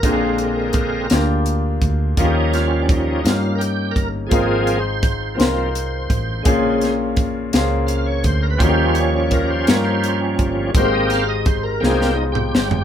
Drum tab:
HH |x-x-x-x-x-x-|x-x-x-x-x-x-|x-x-x-x-x-x-|x-x-x-x-x-x-|
SD |------o-----|--o---o-----|------o-----|--o---o-----|
T2 |------------|------------|------------|------------|
FT |------------|------------|------------|------------|
BD |o---o-----o-|o---o-----o-|o---o-----o-|o---o-----o-|

HH |x-x-x-x-x-x-|x-x-x-------|
SD |------o-----|--o---oo--o-|
T2 |------------|---------o--|
FT |------------|-----------o|
BD |o---o-----o-|o---o-------|